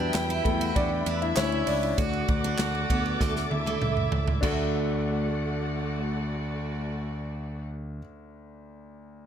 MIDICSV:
0, 0, Header, 1, 7, 480
1, 0, Start_track
1, 0, Key_signature, 2, "major"
1, 0, Tempo, 611372
1, 1556, Time_signature, 4, 2, 24, 8
1, 7273, End_track
2, 0, Start_track
2, 0, Title_t, "String section"
2, 0, Program_c, 0, 48
2, 0, Note_on_c, 0, 64, 76
2, 0, Note_on_c, 0, 76, 74
2, 0, Note_on_c, 0, 83, 89
2, 1535, Note_off_c, 0, 64, 0
2, 1535, Note_off_c, 0, 76, 0
2, 1536, Note_off_c, 0, 83, 0
2, 1550, Note_on_c, 0, 74, 73
2, 1550, Note_on_c, 0, 86, 86
2, 1551, Note_on_c, 0, 69, 80
2, 3454, Note_off_c, 0, 69, 0
2, 3454, Note_off_c, 0, 74, 0
2, 3454, Note_off_c, 0, 86, 0
2, 3471, Note_on_c, 0, 57, 82
2, 3472, Note_on_c, 0, 66, 70
2, 3473, Note_on_c, 0, 74, 71
2, 3474, Note_on_c, 0, 78, 82
2, 5990, Note_off_c, 0, 57, 0
2, 5991, Note_off_c, 0, 66, 0
2, 5991, Note_off_c, 0, 74, 0
2, 5992, Note_off_c, 0, 78, 0
2, 7273, End_track
3, 0, Start_track
3, 0, Title_t, "Violin section"
3, 0, Program_c, 1, 48
3, 0, Note_on_c, 1, 64, 84
3, 0, Note_on_c, 1, 79, 97
3, 813, Note_off_c, 1, 64, 0
3, 813, Note_off_c, 1, 79, 0
3, 836, Note_on_c, 1, 76, 90
3, 838, Note_on_c, 1, 64, 77
3, 1542, Note_off_c, 1, 64, 0
3, 1542, Note_off_c, 1, 76, 0
3, 1558, Note_on_c, 1, 66, 82
3, 1558, Note_on_c, 1, 78, 90
3, 2733, Note_off_c, 1, 66, 0
3, 2733, Note_off_c, 1, 78, 0
3, 2753, Note_on_c, 1, 64, 75
3, 2754, Note_on_c, 1, 76, 82
3, 3460, Note_off_c, 1, 64, 0
3, 3461, Note_off_c, 1, 76, 0
3, 3473, Note_on_c, 1, 57, 83
3, 3473, Note_on_c, 1, 74, 92
3, 3474, Note_on_c, 1, 66, 90
3, 5991, Note_off_c, 1, 57, 0
3, 5991, Note_off_c, 1, 74, 0
3, 5992, Note_off_c, 1, 66, 0
3, 7273, End_track
4, 0, Start_track
4, 0, Title_t, "Grand piano"
4, 0, Program_c, 2, 0
4, 0, Control_c, 2, 64, 127
4, 0, Note_on_c, 2, 54, 64
4, 0, Note_on_c, 2, 55, 58
4, 0, Note_on_c, 2, 59, 70
4, 0, Note_on_c, 2, 64, 54
4, 0, Note_on_c, 2, 71, 96
4, 327, Note_off_c, 2, 59, 0
4, 346, Note_on_c, 2, 69, 87
4, 360, Note_on_c, 2, 57, 64
4, 373, Note_off_c, 2, 71, 0
4, 581, Note_off_c, 2, 57, 0
4, 595, Note_on_c, 2, 74, 103
4, 598, Note_off_c, 2, 69, 0
4, 608, Note_on_c, 2, 62, 80
4, 937, Note_off_c, 2, 62, 0
4, 952, Note_off_c, 2, 64, 0
4, 955, Note_on_c, 2, 76, 100
4, 964, Note_on_c, 2, 64, 75
4, 966, Note_off_c, 2, 74, 0
4, 1072, Note_off_c, 2, 64, 0
4, 1073, Note_on_c, 2, 73, 105
4, 1079, Note_off_c, 2, 76, 0
4, 1084, Note_on_c, 2, 61, 77
4, 1297, Note_off_c, 2, 73, 0
4, 1303, Note_off_c, 2, 61, 0
4, 1308, Note_on_c, 2, 74, 95
4, 1322, Note_on_c, 2, 62, 76
4, 1522, Note_off_c, 2, 55, 0
4, 1527, Note_off_c, 2, 54, 0
4, 1546, Note_off_c, 2, 62, 0
4, 1552, Note_on_c, 2, 57, 60
4, 1558, Note_on_c, 2, 62, 55
4, 1565, Control_c, 2, 64, 0
4, 1681, Control_c, 2, 64, 127
4, 2241, Note_off_c, 2, 74, 0
4, 2243, Note_off_c, 2, 57, 0
4, 2246, Note_off_c, 2, 62, 0
4, 3461, Note_on_c, 2, 62, 86
4, 3471, Note_on_c, 2, 66, 72
4, 3476, Note_on_c, 2, 38, 76
4, 3481, Note_on_c, 2, 69, 72
4, 3487, Control_c, 2, 64, 0
4, 3490, Note_on_c, 2, 78, 85
4, 3628, Control_c, 2, 64, 127
4, 6264, Note_off_c, 2, 62, 0
4, 6275, Note_off_c, 2, 66, 0
4, 6280, Note_off_c, 2, 38, 0
4, 6284, Note_off_c, 2, 69, 0
4, 6293, Note_off_c, 2, 78, 0
4, 7273, End_track
5, 0, Start_track
5, 0, Title_t, "Steel-string acoustic guitar"
5, 0, Program_c, 3, 25
5, 0, Note_on_c, 3, 62, 86
5, 104, Note_off_c, 3, 62, 0
5, 236, Note_on_c, 3, 64, 78
5, 350, Note_off_c, 3, 64, 0
5, 479, Note_on_c, 3, 66, 81
5, 705, Note_off_c, 3, 66, 0
5, 839, Note_on_c, 3, 62, 75
5, 952, Note_off_c, 3, 62, 0
5, 1078, Note_on_c, 3, 64, 81
5, 1415, Note_off_c, 3, 64, 0
5, 1555, Note_on_c, 3, 66, 91
5, 1783, Note_off_c, 3, 66, 0
5, 1918, Note_on_c, 3, 62, 80
5, 2031, Note_off_c, 3, 62, 0
5, 2279, Note_on_c, 3, 59, 72
5, 2505, Note_off_c, 3, 59, 0
5, 2521, Note_on_c, 3, 57, 74
5, 2633, Note_off_c, 3, 57, 0
5, 2882, Note_on_c, 3, 57, 67
5, 3107, Note_off_c, 3, 57, 0
5, 3480, Note_on_c, 3, 57, 79
5, 4887, Note_off_c, 3, 57, 0
5, 7273, End_track
6, 0, Start_track
6, 0, Title_t, "Picked electric bass"
6, 0, Program_c, 4, 34
6, 114, Note_on_c, 4, 40, 98
6, 312, Note_off_c, 4, 40, 0
6, 354, Note_on_c, 4, 40, 92
6, 552, Note_off_c, 4, 40, 0
6, 597, Note_on_c, 4, 40, 106
6, 793, Note_off_c, 4, 40, 0
6, 836, Note_on_c, 4, 40, 97
6, 1032, Note_off_c, 4, 40, 0
6, 1074, Note_on_c, 4, 38, 100
6, 1272, Note_off_c, 4, 38, 0
6, 1315, Note_on_c, 4, 37, 92
6, 1512, Note_off_c, 4, 37, 0
6, 1556, Note_on_c, 4, 38, 103
6, 1753, Note_off_c, 4, 38, 0
6, 1796, Note_on_c, 4, 38, 99
6, 1993, Note_off_c, 4, 38, 0
6, 2034, Note_on_c, 4, 38, 89
6, 2232, Note_off_c, 4, 38, 0
6, 2277, Note_on_c, 4, 38, 82
6, 2473, Note_off_c, 4, 38, 0
6, 2519, Note_on_c, 4, 38, 106
6, 2715, Note_off_c, 4, 38, 0
6, 2754, Note_on_c, 4, 38, 84
6, 2951, Note_off_c, 4, 38, 0
6, 2997, Note_on_c, 4, 37, 93
6, 3193, Note_off_c, 4, 37, 0
6, 3238, Note_on_c, 4, 37, 85
6, 3434, Note_off_c, 4, 37, 0
6, 3478, Note_on_c, 4, 38, 89
6, 6281, Note_off_c, 4, 38, 0
6, 7273, End_track
7, 0, Start_track
7, 0, Title_t, "Drums"
7, 0, Note_on_c, 9, 51, 42
7, 76, Note_off_c, 9, 51, 0
7, 109, Note_on_c, 9, 39, 86
7, 115, Note_on_c, 9, 38, 109
7, 117, Note_on_c, 9, 51, 79
7, 188, Note_off_c, 9, 39, 0
7, 193, Note_off_c, 9, 38, 0
7, 195, Note_off_c, 9, 51, 0
7, 355, Note_on_c, 9, 36, 88
7, 358, Note_on_c, 9, 51, 68
7, 433, Note_off_c, 9, 36, 0
7, 436, Note_off_c, 9, 51, 0
7, 480, Note_on_c, 9, 51, 38
7, 558, Note_off_c, 9, 51, 0
7, 597, Note_on_c, 9, 36, 89
7, 597, Note_on_c, 9, 51, 73
7, 675, Note_off_c, 9, 36, 0
7, 676, Note_off_c, 9, 51, 0
7, 834, Note_on_c, 9, 51, 68
7, 913, Note_off_c, 9, 51, 0
7, 957, Note_on_c, 9, 51, 43
7, 1036, Note_off_c, 9, 51, 0
7, 1071, Note_on_c, 9, 39, 89
7, 1073, Note_on_c, 9, 51, 68
7, 1077, Note_on_c, 9, 38, 110
7, 1150, Note_off_c, 9, 39, 0
7, 1152, Note_off_c, 9, 51, 0
7, 1155, Note_off_c, 9, 38, 0
7, 1195, Note_on_c, 9, 51, 33
7, 1273, Note_off_c, 9, 51, 0
7, 1310, Note_on_c, 9, 46, 77
7, 1310, Note_on_c, 9, 51, 63
7, 1389, Note_off_c, 9, 46, 0
7, 1389, Note_off_c, 9, 51, 0
7, 1436, Note_on_c, 9, 51, 47
7, 1514, Note_off_c, 9, 51, 0
7, 1554, Note_on_c, 9, 51, 81
7, 1555, Note_on_c, 9, 36, 109
7, 1555, Note_on_c, 9, 44, 66
7, 1633, Note_off_c, 9, 44, 0
7, 1633, Note_off_c, 9, 51, 0
7, 1634, Note_off_c, 9, 36, 0
7, 1675, Note_on_c, 9, 51, 34
7, 1753, Note_off_c, 9, 51, 0
7, 1793, Note_on_c, 9, 51, 60
7, 1796, Note_on_c, 9, 36, 95
7, 1872, Note_off_c, 9, 51, 0
7, 1874, Note_off_c, 9, 36, 0
7, 1918, Note_on_c, 9, 51, 37
7, 1997, Note_off_c, 9, 51, 0
7, 2030, Note_on_c, 9, 39, 81
7, 2035, Note_on_c, 9, 38, 109
7, 2037, Note_on_c, 9, 51, 79
7, 2108, Note_off_c, 9, 39, 0
7, 2114, Note_off_c, 9, 38, 0
7, 2116, Note_off_c, 9, 51, 0
7, 2157, Note_on_c, 9, 51, 36
7, 2235, Note_off_c, 9, 51, 0
7, 2276, Note_on_c, 9, 36, 88
7, 2278, Note_on_c, 9, 51, 65
7, 2355, Note_off_c, 9, 36, 0
7, 2357, Note_off_c, 9, 51, 0
7, 2399, Note_on_c, 9, 51, 35
7, 2478, Note_off_c, 9, 51, 0
7, 2517, Note_on_c, 9, 38, 61
7, 2518, Note_on_c, 9, 36, 86
7, 2595, Note_off_c, 9, 38, 0
7, 2596, Note_off_c, 9, 36, 0
7, 2638, Note_on_c, 9, 38, 57
7, 2716, Note_off_c, 9, 38, 0
7, 2757, Note_on_c, 9, 48, 70
7, 2835, Note_off_c, 9, 48, 0
7, 2876, Note_on_c, 9, 48, 73
7, 2955, Note_off_c, 9, 48, 0
7, 2996, Note_on_c, 9, 47, 90
7, 3074, Note_off_c, 9, 47, 0
7, 3115, Note_on_c, 9, 45, 75
7, 3193, Note_off_c, 9, 45, 0
7, 3234, Note_on_c, 9, 43, 100
7, 3313, Note_off_c, 9, 43, 0
7, 3356, Note_on_c, 9, 43, 94
7, 3435, Note_off_c, 9, 43, 0
7, 3477, Note_on_c, 9, 36, 102
7, 3478, Note_on_c, 9, 49, 86
7, 3555, Note_off_c, 9, 36, 0
7, 3556, Note_off_c, 9, 49, 0
7, 7273, End_track
0, 0, End_of_file